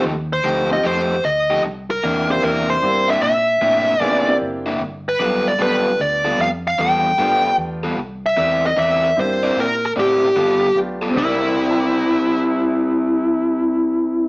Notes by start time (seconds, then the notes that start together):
Already playing: F3 A3 D#4 G4
0.05 D#2
0.33 C5
0.44 D2 F3 A3 D#4 G4
0.70 A3 C4 D#4 F4 G4 D#5
0.84 F2 F3 A3 D#4 G4 C5
1.25 D2 D#5
1.50 F3 A3 D#4 G4
1.64 C2
1.91 A#4
2.04 E2 C3 A#3 D4 E4
2.28 A#3 C4 D4 E4 G4 C5
2.43 E2 C3 A#3 D4 E4 A#4
2.70 C5
2.82 G2 A#3 C4 D4 E4 G4
3.08 C3 A#3 D4 E4 E5
3.22 A#2 E5
3.61 A2 C3 A#3 D4 E4
4.00 C3 A#3 B3 C#4 D4 D#4 E4 F4 G#4 D5
4.27 A#3 C4 D4 E4 G4
4.41 F#1
4.66 C3 A#3 D4 E4
4.80 G1
5.09 B4
5.20 B1 G3 B3 F4 A4
5.48 D5
5.59 B1 G3 A3 B3 D4 F4 G4 A4 B4
6.00 D2 D5
6.25 G3 B3 F4 A4
6.39 F2 F5
6.67 F5
6.78 E2 G3 B3 F4 A4 G5
7.18 G2 G3 A3 B3 D4 F4 G4 A4
7.58 E2
7.83 G3 B3 F4 A4
7.98 C2
8.26 E5
8.37 E2 C4 E4 A#4 D5
8.66 D#5
8.77 E2 C4 E4 A#4 D5 E5
9.16 G2 A#3 C4 D4 E4 G4 C5
9.43 C4 E4 A#4 D5
9.57 A#2 A#4
9.86 A#4
9.96 A2 C4 E4 G4 A#4 D5
10.36 G1 G3 B3 F4 A4
10.75 B1 A3 B3 D4 F4 G4
11.02 G3 B3 F4 A4
11.10 C3 C4
11.14 C2 C4 D4 E4 A#4 D5
11.19 E4 A#4
11.55 D5
11.62 G5
11.70 A#5
11.80 D6
11.90 G6
12.00 A#6
12.12 D7